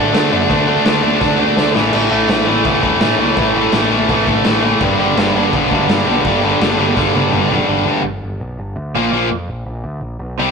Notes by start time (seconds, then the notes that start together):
Already playing: D3 A3 D4 F#4
0.13 D3 A3 D4, snare, crash
0.32 F#2 D3 A3 D4
0.49 D2 D3 A3 D4 F#4, kick, crash
0.68 D3 A3 D4
0.85 D2 D3 A3 D4, snare, crash
1.02 D2 D3 A3 D4 F#4
1.20 D2 D3 A3 D4, kick, snare
1.39 D2 D3 A3 D4
1.57 D2 D3 A3 D4, snare
1.74 A1 A2 E3 A3 C#4 E4, snare
1.93 A1 A2 E3 A3, crash
2.11 A1 A2 E3 A3
2.28 A1 A2 E3 A3 C#4 E4, snare, crash
2.47 A1 A2 E3 A3
2.65 D2 A2 E3 A3, kick, crash
2.82 E2 A2 E3 A3, kick
3.00 A2 E3 A3, snare, crash
3.17 C#2 A2 E3 A3 C#4 E4
3.37 A1 A2 E3 A3, kick, crash
3.55 A2 E3 A3
3.72 A1 A2 E3 A3 C#4 E4, snare, crash
3.89 A1 A2 E3 A3
4.08 A1 A2 E3 A3, kick, crash
4.27 A1 A2 E3 A3, kick
4.44 A1 A2 E3 A3, snare, crash
4.64 A2 E3 A3
4.81 G1 G2 D3 G3 B3 D4, kick, crash
4.97 G1 G2 D3 G3
5.16 G1 G2 D3 G3, snare, crash
5.33 G1 G2 D3 G3 B3 D4
5.53 B1 G2 D3 G3, kick, crash
5.71 D2 G2 D3 G3, kick
5.87 G2 D3 G3, snare, crash
6.05 B1 G2 D3
6.10 G3
6.24 G1 G2 D3 G3 B3 D4, kick, crash
6.43 G2 D3 G3
6.59 G1 G2 D3 G3, snare, crash
6.76 G1 G2 D3 B3 D4
6.80 G3
6.96 G1 G2 D3 G3, kick, snare
7.14 G1 G2 D3 G3, high tom
7.31 G1 G2 D3 G3, mid tom
7.49 G2 D3 G3, floor tom
7.67 G1 G2 D3 G3
7.85 D2 G2 D3 G3
8.02 G1
8.22 G1
8.40 B1
8.58 G1
8.76 D2
8.94 A#1 A#2 F3 A#3
9.12 A#1 A#2 F3 A#3
9.31 F2
9.49 A#1
9.66 A#1
9.84 D2
10.01 A#1
10.19 B1
10.37 C2 C3 G3 C4